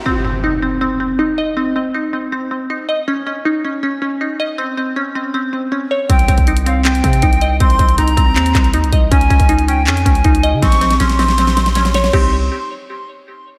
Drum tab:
CC |----------------|----------------|----------------|----------------|
HH |----------------|----------------|----------------|----------------|
CP |----------------|----------------|----------------|----------------|
SD |----------------|----------------|----------------|----------------|
BD |----------------|----------------|----------------|----------------|

CC |----------------|----------------|----------------|----------------|
HH |xxxxxxx-xxxxxxx-|xxxxxxx-xxxxxxx-|xxxxxxx-xxxxxxx-|xxxxxxo-xxxxxxx-|
CP |--------x-------|--------x-x-----|--------x-------|----------------|
SD |----------------|----------------|----------------|oooooooooooooooo|
BD |o-oo------o-o---|o-o---o---o---o-|o-oo------o-o---|o---------------|

CC |x---------------|
HH |----------------|
CP |----------------|
SD |----------------|
BD |o---------------|